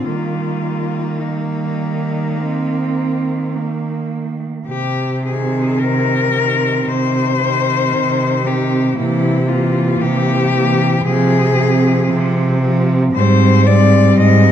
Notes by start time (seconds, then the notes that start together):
0.04 D#3 G3 A#3 F4
1.21 G3 D#4
2.39 C4
3.55 A#3
4.68 C3 G4
5.23 D#3 C4 G#4
5.79 C3 A#4
6.32 D#3 C4
6.87 C3 C5
7.38 D#3 C4
7.94 C3
8.44 D#3 C4 G4
8.96 C3 E3 A#3 E4
9.48 E3 A#3 F4
10.00 C3 G4
10.52 E3 A#3
11.04 C3 F3 C4 G#4
11.55 F3 C4
12.10 C3
12.61 F3 C4
13.14 G#2 G3 C4 C5
13.66 G3 C4 D5
14.17 G#2 D#5